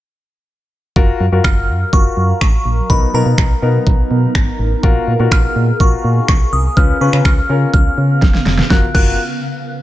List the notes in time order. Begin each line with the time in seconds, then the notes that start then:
0.96 F#1 F#3 F4 F#4 A#4 F5, kick
1.20 F#2
1.32 F#2 F4 F#4 A#4
1.44 F#1 F6, finger snap, kick
1.69 F#2
1.93 F#1 F4 F#4 A#4 C#6, kick
2.17 F#2
2.41 A1 C#6, finger snap, kick
2.65 A#1
2.90 B1 B3 D#4 A#4 B5, kick
3.14 B2 B3 D#4 A#4 A#5
3.26 B2
3.38 B1, finger snap, kick
3.62 B2 B3 D#4 A#4
3.87 B1, kick
4.11 B2
4.35 G#1, finger snap, kick
4.59 A1
4.83 A#1 F4 F#4 G#4 A#4 F5, kick
5.08 A#2
5.19 A#2 F4 F#4 A#4
5.31 A#1 F6, finger snap, kick
5.56 A#2
5.80 A#1 F4 F#4 A#4 C#6, kick
6.04 A#2
6.28 B1 C#6, finger snap, kick
6.53 C2 D#6
6.77 C#2 C#3 B3 C#4 F4 B4 F6, kick
7.01 C#3 C#4 F4 B4 C#6
7.13 C#3, finger snap
7.25 C#2 F6, finger snap, kick
7.49 C#3 C#4 F4 A#4
7.73 C#2 F6, kick
7.98 C#3
8.22 E1, kick, snare
8.34 snare
8.46 F1, snare
8.58 snare
8.70 F#1 F4 F#4 A#4 F#6, kick, snare
8.94 F#1 F4 F#4 A#4 F#6, kick, crash